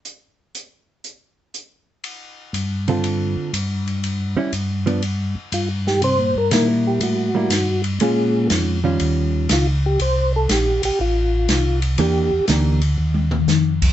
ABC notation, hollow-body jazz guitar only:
X:1
M:4/4
L:1/8
Q:"Swing" 1/4=121
K:Cmix
V:1 name="Hollow-body jazz guitar"
z8 | z3 [D,CFA]3 z2 | z [G,^CE] z [F,=B,D] z4 | z2 [G,B,E]3 [G,B,E] z2 |
[_A,_DF]3 [_E,G,DF]3 z2 | z8 | [E,B,DG] z [E,B,DG] z4 z |]